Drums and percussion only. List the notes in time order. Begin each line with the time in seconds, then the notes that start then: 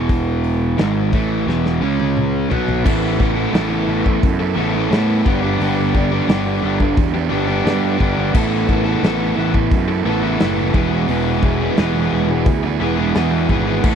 0.09 kick, open hi-hat
0.44 open hi-hat
0.78 snare, open hi-hat
1.13 kick, open hi-hat
1.49 snare
1.65 snare
2.00 high tom
2.17 mid tom
2.51 floor tom
2.68 floor tom
2.86 kick, crash
3.20 kick
3.54 snare, open hi-hat
4.06 kick
4.23 kick, open hi-hat
4.92 snare, open hi-hat
5.26 kick
5.61 open hi-hat
5.95 kick
6.29 snare, open hi-hat
6.80 kick
6.97 kick, open hi-hat
7.66 snare, open hi-hat
8.00 kick
8.35 kick, crash
8.69 kick
9.04 snare, open hi-hat
9.54 kick
9.71 kick, open hi-hat
10.40 snare, open hi-hat
10.74 kick
11.08 open hi-hat
11.43 kick
11.77 snare, open hi-hat
12.46 kick, open hi-hat
13.15 snare, open hi-hat
13.49 kick
13.84 kick, crash